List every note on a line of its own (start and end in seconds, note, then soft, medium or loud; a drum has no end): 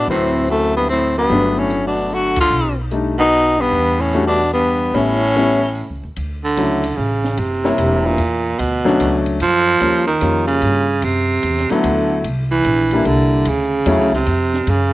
0.08 1.25 D2 medium
0.08 0.47 A2 medium
0.08 1.22 F#3 soft
0.08 0.47 C4 medium
0.08 1.22 C4 soft
0.08 1.22 E4 medium
0.08 1.22 B4 soft
0.08 kick soft
0.08 open hi-hat soft
0.48 0.73 F#2 medium
0.48 0.74 A3 medium
0.48 closed hi-hat soft
0.76 0.88 G2 medium
0.76 0.89 B3 medium
0.89 1.15 A2 medium
0.89 1.14 C4 medium
0.89 closed hi-hat soft
1.16 1.58 G2 medium
1.16 1.60 B3 medium
1.16 open hi-hat soft
1.29 2.47 G1 medium
1.29 2.43 F#3 medium
1.29 2.43 A3 medium
1.29 2.43 B3 medium
1.29 2.44 D4 medium
1.29 kick soft
1.29 open hi-hat soft
1.57 1.84 A2 medium
1.57 1.85 C#4 medium
1.70 closed hi-hat medium
1.86 2.14 B2 medium
1.86 2.16 D4 medium
1.96 open hi-hat soft
2.10 2.38 D3 medium
2.10 open hi-hat soft
2.14 2.39 F#4 medium
2.36 kick medium
2.36 ride medium
2.41 2.77 D3 medium
2.41 2.77 F4 medium
2.51 3.68 B1 medium
2.91 3.15 G3 medium
2.91 3.16 A3 soft
2.91 3.16 D4 soft
2.91 3.16 D#4 medium
2.91 closed hi-hat soft
3.18 3.60 B2 medium
3.18 3.62 D#4 loud
3.18 open hi-hat soft
3.31 open hi-hat soft
3.59 4.01 G2 medium
3.59 4.02 B3 loud
3.72 4.90 E2 medium
3.72 kick soft
3.72 open hi-hat soft
4.00 4.26 A2 medium
4.00 4.27 C#4 medium
4.12 4.38 G3 medium
4.12 4.38 A3 medium
4.12 4.38 D4 medium
4.12 4.38 F#4 medium
4.12 closed hi-hat soft
4.27 4.52 B2 medium
4.27 4.52 D4 medium
4.39 open hi-hat soft
4.53 4.91 G2 medium
4.53 4.91 B3 medium
4.53 open hi-hat soft
4.94 5.85 A1 medium
4.94 5.98 A2 medium
4.94 5.18 G3 medium
4.94 5.18 B3 medium
4.94 5.18 C#4 medium
4.94 5.99 C#4 medium
4.94 5.19 E4 medium
4.94 kick soft
4.94 open hi-hat soft
5.35 5.59 G3 medium
5.35 5.59 B3 medium
5.35 5.60 C#4 medium
5.35 5.60 E4 medium
5.35 closed hi-hat medium
5.62 open hi-hat soft
5.75 open hi-hat soft
5.90 6.02 C#2 soft
6.03 6.16 D#2 medium
6.16 6.56 D2 medium
6.16 kick soft
6.16 ride soft
6.44 6.98 D3 medium
6.57 6.96 C#2 medium
6.57 6.81 F#3 medium
6.57 6.81 A3 soft
6.57 6.82 C#4 soft
6.57 6.82 E4 medium
6.57 kick soft
6.57 hi-hat pedal medium
6.57 ride medium
6.84 ride medium
6.96 7.37 A1 medium
6.96 7.40 C#3 medium
6.96 kick soft
7.24 snare soft
7.37 7.77 F#1 medium
7.37 8.08 C3 medium
7.37 kick soft
7.37 ride soft
7.64 8.16 G3 medium
7.64 8.16 A#3 medium
7.64 8.17 E4 medium
7.64 8.16 C#5 medium
7.64 snare medium
7.78 8.18 E1 medium
7.78 kick soft
7.78 hi-hat pedal soft
7.78 ride medium
8.06 8.61 A#2 medium
8.18 8.58 E2 medium
8.18 ride soft
8.59 8.99 D2 medium
8.59 9.27 B2 medium
8.59 kick soft
8.59 ride medium
8.85 9.37 F#3 medium
8.85 9.37 A3 medium
8.85 9.38 C#4 medium
8.85 9.38 D4 medium
8.85 snare soft
9.00 9.39 C#2 medium
9.00 kick soft
9.00 hi-hat pedal medium
9.00 ride medium
9.26 ride soft
9.40 9.80 F#2 medium
9.40 10.04 F3 loud
9.40 kick soft
9.40 ride medium
9.80 10.20 D#2 medium
9.80 10.05 G3 soft
9.80 10.05 A#3 soft
9.80 10.05 C#4 soft
9.80 10.05 F4 medium
9.80 kick soft
9.80 ride medium
10.07 10.45 D#3 medium
10.21 10.61 F2 medium
10.21 10.83 G3 soft
10.21 10.83 A#3 soft
10.21 10.84 C#4 soft
10.21 10.84 F4 medium
10.21 kick soft
10.21 hi-hat pedal medium
10.21 ride medium
10.47 11.06 C#3 medium
10.47 ride soft
10.62 11.01 G2 medium
10.62 kick soft
10.62 ride soft
11.02 11.42 F#2 medium
11.02 11.72 C3 medium
11.02 kick soft
11.02 ride medium
11.43 11.68 E2 medium
11.43 kick soft
11.43 hi-hat pedal soft
11.43 ride medium
11.58 snare soft
11.70 12.25 D3 medium
11.70 12.22 F#3 medium
11.70 12.22 A3 medium
11.70 12.23 B3 medium
11.70 12.23 E4 medium
11.70 muted upright bass stroke soft
11.70 snare soft
11.70 ride soft
11.84 12.23 D2 medium
11.84 kick soft
11.84 ride medium
12.24 12.64 C2 medium
12.24 kick soft
12.24 ride medium
12.51 13.08 E3 medium
12.64 13.04 A#1 medium
12.64 kick soft
12.64 hi-hat pedal medium
12.64 ride medium
12.91 13.44 G3 medium
12.91 13.44 A#3 medium
12.91 13.44 D4 medium
12.91 13.44 E4 medium
12.91 ride soft
13.05 13.45 C2 medium
13.05 13.50 D3 medium
13.05 kick soft
13.05 ride soft
13.45 13.85 D2 medium
13.45 14.14 C#3 medium
13.45 kick soft
13.45 ride medium
13.86 13.99 E2 medium
13.86 14.10 F#3 medium
13.86 14.11 A3 medium
13.86 14.11 C#4 medium
13.86 14.11 E4 medium
13.86 kick soft
13.86 hi-hat pedal soft
13.86 ride medium
13.99 14.12 D2 soft
13.99 snare soft
14.12 14.25 C#2 medium
14.12 14.71 C3 medium
14.12 snare soft
14.26 14.66 F2 medium
14.26 kick soft
14.26 ride medium
14.54 snare soft
14.67 14.92 F#2 medium
14.67 14.93 C#3 medium
14.67 kick soft
14.67 ride medium